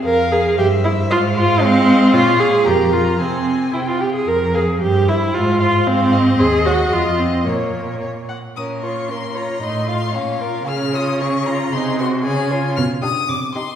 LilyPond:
<<
  \new Staff \with { instrumentName = "Violin" } { \time 2/4 \key f \minor \tempo 4 = 114 f''4 c''4~ | c''4 ees''4 | des''4 bes'4 | aes'4. r8 |
r4 c''4~ | c''4 f''8 ees''8~ | \key bes \minor ees''2 | des''4. r8 |
ees'''8 des'''8 c'''8 bes''8 | c'''8 c'''8 f''4 | f'''8 ees'''8 des'''8 bes''8 | c'''8 c'''8 aes''4 |
\key g \phrygian f'''8 ees'''8 d'''8 c'''8 | }
  \new Staff \with { instrumentName = "Violin" } { \time 2/4 \key f \minor f''4 e''4 | f''2 | f''4 bes''4 | aes''4 g''8 r8 |
r8 f''8 r8 e''8 | r8 f''8 r8 f''8 | \key bes \minor c''8 des''8 ees''4 | des''4 des''8 ges''8 |
bes'8 des''8 bes'8 des''8 | ees''8 f''8 des''8 bes'8 | aes'8 des''8 aes'8 des''8 | aes'8 c''8 aes'8 des''8 |
\key g \phrygian r8 g'8 r8 g'8 | }
  \new Staff \with { instrumentName = "Viola" } { \time 2/4 \key f \minor bes'8 aes'8 g'8 e'8 | f'8 f'8 c'4 | f'8 aes'8 g'8 f'8 | c'4 e'16 f'16 g'16 aes'16 |
bes'8 aes'8 g'8 e'8 | f'8 f'8 c'4 | \key bes \minor aes'8 ges'8 f'8 c'8 | bes4 r4 |
des'8 f'8 des'8 f'8 | ees'8 f'8 des'8 f'8 | des'8 f'8 des'8 f'8 | ees'8 ges'8 des'8 f'8 |
\key g \phrygian r8 d'8 r8 ees'8 | }
  \new Staff \with { instrumentName = "Cello" } { \clef bass \time 2/4 \key f \minor f,4 g,4 | aes,4 aes4 | bes,4 f,4 | c4 c4 |
f,4 g,4 | aes,4 aes,4 | \key bes \minor ees,4 f,4 | bes,4. r8 |
bes,2 | a,4 bes,4 | des2 | c4 des4 |
\key g \phrygian b,4 c4 | }
>>